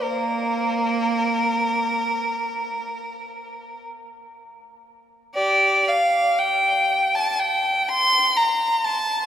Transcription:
0, 0, Header, 1, 2, 480
1, 0, Start_track
1, 0, Key_signature, -2, "major"
1, 0, Tempo, 1310044
1, 13, Time_signature, 4, 2, 24, 8
1, 493, Tempo, 1247401
1, 1453, Tempo, 1507538
1, 1933, Tempo, 1056338
1, 2413, Tempo, 1005025
1, 2893, Tempo, 950872
1, 3827, End_track
2, 0, Start_track
2, 0, Title_t, "Violin"
2, 0, Program_c, 0, 40
2, 8, Note_on_c, 0, 58, 67
2, 10, Note_on_c, 0, 70, 75
2, 719, Note_off_c, 0, 58, 0
2, 1451, Note_off_c, 0, 70, 0
2, 1933, Note_on_c, 0, 74, 91
2, 1935, Note_on_c, 0, 67, 77
2, 2161, Note_off_c, 0, 74, 0
2, 2163, Note_off_c, 0, 67, 0
2, 2176, Note_on_c, 0, 77, 92
2, 2405, Note_on_c, 0, 79, 90
2, 2411, Note_off_c, 0, 77, 0
2, 2768, Note_on_c, 0, 81, 93
2, 2769, Note_off_c, 0, 79, 0
2, 2886, Note_on_c, 0, 79, 93
2, 2890, Note_off_c, 0, 81, 0
2, 3134, Note_on_c, 0, 84, 108
2, 3137, Note_off_c, 0, 79, 0
2, 3376, Note_off_c, 0, 84, 0
2, 3376, Note_on_c, 0, 82, 92
2, 3612, Note_off_c, 0, 82, 0
2, 3614, Note_on_c, 0, 81, 90
2, 3827, Note_off_c, 0, 81, 0
2, 3827, End_track
0, 0, End_of_file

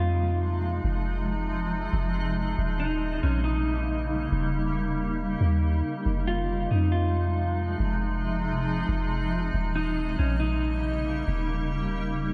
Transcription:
0, 0, Header, 1, 4, 480
1, 0, Start_track
1, 0, Key_signature, -4, "minor"
1, 0, Tempo, 434783
1, 928, Time_signature, 4, 2, 24, 8
1, 13618, End_track
2, 0, Start_track
2, 0, Title_t, "Clean electric guitar"
2, 0, Program_c, 0, 27
2, 0, Note_on_c, 0, 65, 83
2, 881, Note_off_c, 0, 65, 0
2, 3089, Note_on_c, 0, 63, 78
2, 3540, Note_off_c, 0, 63, 0
2, 3567, Note_on_c, 0, 61, 80
2, 3793, Note_off_c, 0, 61, 0
2, 3797, Note_on_c, 0, 63, 97
2, 4719, Note_off_c, 0, 63, 0
2, 6927, Note_on_c, 0, 65, 83
2, 7379, Note_off_c, 0, 65, 0
2, 7406, Note_on_c, 0, 63, 70
2, 7635, Note_off_c, 0, 63, 0
2, 7638, Note_on_c, 0, 65, 87
2, 8559, Note_off_c, 0, 65, 0
2, 10770, Note_on_c, 0, 63, 83
2, 11221, Note_off_c, 0, 63, 0
2, 11248, Note_on_c, 0, 61, 84
2, 11474, Note_off_c, 0, 61, 0
2, 11479, Note_on_c, 0, 63, 95
2, 12400, Note_off_c, 0, 63, 0
2, 13618, End_track
3, 0, Start_track
3, 0, Title_t, "Ambient pad"
3, 0, Program_c, 1, 92
3, 0, Note_on_c, 1, 48, 77
3, 0, Note_on_c, 1, 53, 72
3, 0, Note_on_c, 1, 56, 71
3, 0, Note_on_c, 1, 63, 87
3, 2811, Note_off_c, 1, 48, 0
3, 2811, Note_off_c, 1, 53, 0
3, 2811, Note_off_c, 1, 56, 0
3, 2811, Note_off_c, 1, 63, 0
3, 2850, Note_on_c, 1, 49, 78
3, 2850, Note_on_c, 1, 63, 83
3, 2851, Note_on_c, 1, 58, 71
3, 2852, Note_on_c, 1, 55, 71
3, 6651, Note_off_c, 1, 49, 0
3, 6651, Note_off_c, 1, 58, 0
3, 6652, Note_off_c, 1, 55, 0
3, 6688, Note_on_c, 1, 48, 75
3, 6689, Note_on_c, 1, 56, 75
3, 6690, Note_on_c, 1, 53, 69
3, 10490, Note_off_c, 1, 48, 0
3, 10491, Note_off_c, 1, 53, 0
3, 10491, Note_off_c, 1, 56, 0
3, 10527, Note_on_c, 1, 58, 71
3, 10528, Note_on_c, 1, 49, 75
3, 10528, Note_on_c, 1, 55, 70
3, 13618, Note_off_c, 1, 49, 0
3, 13618, Note_off_c, 1, 55, 0
3, 13618, Note_off_c, 1, 58, 0
3, 13618, Note_off_c, 1, 63, 0
3, 13618, End_track
4, 0, Start_track
4, 0, Title_t, "808-style bass"
4, 0, Program_c, 2, 38
4, 0, Note_on_c, 2, 41, 96
4, 885, Note_off_c, 2, 41, 0
4, 929, Note_on_c, 2, 29, 113
4, 2085, Note_off_c, 2, 29, 0
4, 2129, Note_on_c, 2, 29, 103
4, 2820, Note_off_c, 2, 29, 0
4, 2850, Note_on_c, 2, 27, 114
4, 3540, Note_off_c, 2, 27, 0
4, 3569, Note_on_c, 2, 34, 96
4, 4725, Note_off_c, 2, 34, 0
4, 4768, Note_on_c, 2, 27, 115
4, 5924, Note_off_c, 2, 27, 0
4, 5968, Note_on_c, 2, 39, 103
4, 6429, Note_off_c, 2, 39, 0
4, 6687, Note_on_c, 2, 29, 114
4, 7379, Note_off_c, 2, 29, 0
4, 7408, Note_on_c, 2, 41, 96
4, 8564, Note_off_c, 2, 41, 0
4, 8607, Note_on_c, 2, 29, 110
4, 9764, Note_off_c, 2, 29, 0
4, 9809, Note_on_c, 2, 29, 105
4, 10500, Note_off_c, 2, 29, 0
4, 10530, Note_on_c, 2, 27, 115
4, 11220, Note_off_c, 2, 27, 0
4, 11249, Note_on_c, 2, 34, 99
4, 12405, Note_off_c, 2, 34, 0
4, 12449, Note_on_c, 2, 27, 112
4, 13605, Note_off_c, 2, 27, 0
4, 13618, End_track
0, 0, End_of_file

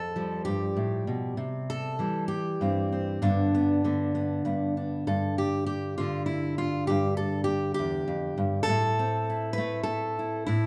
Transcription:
0, 0, Header, 1, 2, 480
1, 0, Start_track
1, 0, Tempo, 606673
1, 1102, Time_signature, 6, 3, 24, 8
1, 2059, Tempo, 617920
1, 4459, Tempo, 599401
1, 8441, End_track
2, 0, Start_track
2, 0, Title_t, "Steel-string acoustic guitar"
2, 0, Program_c, 0, 25
2, 0, Note_on_c, 0, 41, 71
2, 0, Note_on_c, 0, 60, 49
2, 0, Note_on_c, 0, 69, 102
2, 124, Note_on_c, 0, 53, 58
2, 126, Note_off_c, 0, 60, 0
2, 129, Note_on_c, 0, 55, 39
2, 352, Note_off_c, 0, 69, 0
2, 355, Note_on_c, 0, 67, 89
2, 360, Note_off_c, 0, 41, 0
2, 363, Note_on_c, 0, 43, 57
2, 606, Note_on_c, 0, 45, 59
2, 612, Note_off_c, 0, 43, 0
2, 846, Note_off_c, 0, 45, 0
2, 850, Note_on_c, 0, 47, 57
2, 1066, Note_off_c, 0, 53, 0
2, 1083, Note_off_c, 0, 47, 0
2, 1086, Note_on_c, 0, 48, 72
2, 1090, Note_off_c, 0, 67, 0
2, 1343, Note_on_c, 0, 69, 99
2, 1573, Note_off_c, 0, 48, 0
2, 1574, Note_on_c, 0, 52, 52
2, 1577, Note_off_c, 0, 55, 0
2, 1580, Note_on_c, 0, 55, 44
2, 1800, Note_off_c, 0, 69, 0
2, 1803, Note_on_c, 0, 67, 95
2, 2064, Note_on_c, 0, 43, 61
2, 2073, Note_on_c, 0, 60, 42
2, 2300, Note_off_c, 0, 60, 0
2, 2309, Note_on_c, 0, 60, 42
2, 2504, Note_off_c, 0, 52, 0
2, 2510, Note_off_c, 0, 43, 0
2, 2514, Note_off_c, 0, 60, 0
2, 2528, Note_off_c, 0, 67, 0
2, 2537, Note_on_c, 0, 43, 73
2, 2541, Note_on_c, 0, 62, 78
2, 2542, Note_on_c, 0, 50, 49
2, 2545, Note_off_c, 0, 55, 0
2, 2549, Note_on_c, 0, 59, 50
2, 2784, Note_off_c, 0, 59, 0
2, 2792, Note_on_c, 0, 59, 49
2, 3014, Note_off_c, 0, 50, 0
2, 3019, Note_off_c, 0, 59, 0
2, 3024, Note_on_c, 0, 50, 56
2, 3028, Note_on_c, 0, 59, 41
2, 3250, Note_off_c, 0, 59, 0
2, 3260, Note_on_c, 0, 59, 46
2, 3484, Note_off_c, 0, 43, 0
2, 3490, Note_off_c, 0, 59, 0
2, 3493, Note_on_c, 0, 43, 60
2, 3499, Note_on_c, 0, 59, 41
2, 3734, Note_off_c, 0, 62, 0
2, 3743, Note_on_c, 0, 62, 44
2, 3949, Note_off_c, 0, 43, 0
2, 3952, Note_off_c, 0, 59, 0
2, 3954, Note_off_c, 0, 62, 0
2, 3976, Note_on_c, 0, 43, 70
2, 3978, Note_on_c, 0, 69, 86
2, 4215, Note_off_c, 0, 69, 0
2, 4218, Note_on_c, 0, 67, 84
2, 4429, Note_off_c, 0, 67, 0
2, 4438, Note_on_c, 0, 67, 86
2, 4684, Note_off_c, 0, 67, 0
2, 4687, Note_on_c, 0, 65, 83
2, 4693, Note_off_c, 0, 50, 0
2, 4703, Note_on_c, 0, 50, 66
2, 4910, Note_off_c, 0, 65, 0
2, 4913, Note_on_c, 0, 64, 75
2, 5168, Note_off_c, 0, 64, 0
2, 5171, Note_on_c, 0, 65, 84
2, 5391, Note_off_c, 0, 43, 0
2, 5400, Note_off_c, 0, 65, 0
2, 5404, Note_on_c, 0, 67, 97
2, 5424, Note_on_c, 0, 43, 81
2, 5639, Note_off_c, 0, 67, 0
2, 5642, Note_on_c, 0, 69, 94
2, 5855, Note_off_c, 0, 69, 0
2, 5859, Note_on_c, 0, 67, 97
2, 6092, Note_off_c, 0, 67, 0
2, 6102, Note_on_c, 0, 67, 96
2, 6132, Note_off_c, 0, 43, 0
2, 6138, Note_on_c, 0, 40, 68
2, 6364, Note_off_c, 0, 40, 0
2, 6368, Note_on_c, 0, 41, 65
2, 6605, Note_off_c, 0, 41, 0
2, 6608, Note_on_c, 0, 43, 64
2, 6808, Note_off_c, 0, 67, 0
2, 6811, Note_on_c, 0, 69, 117
2, 6846, Note_off_c, 0, 43, 0
2, 6846, Note_off_c, 0, 50, 0
2, 6861, Note_on_c, 0, 45, 82
2, 7102, Note_on_c, 0, 60, 53
2, 7345, Note_on_c, 0, 64, 44
2, 7530, Note_off_c, 0, 69, 0
2, 7533, Note_on_c, 0, 71, 109
2, 7570, Note_on_c, 0, 57, 66
2, 7773, Note_off_c, 0, 71, 0
2, 7776, Note_on_c, 0, 69, 108
2, 8051, Note_off_c, 0, 64, 0
2, 8061, Note_on_c, 0, 64, 48
2, 8270, Note_off_c, 0, 64, 0
2, 8278, Note_off_c, 0, 69, 0
2, 8281, Note_on_c, 0, 64, 84
2, 8282, Note_off_c, 0, 45, 0
2, 8292, Note_on_c, 0, 45, 80
2, 8441, Note_off_c, 0, 45, 0
2, 8441, Note_off_c, 0, 57, 0
2, 8441, Note_off_c, 0, 60, 0
2, 8441, Note_off_c, 0, 64, 0
2, 8441, End_track
0, 0, End_of_file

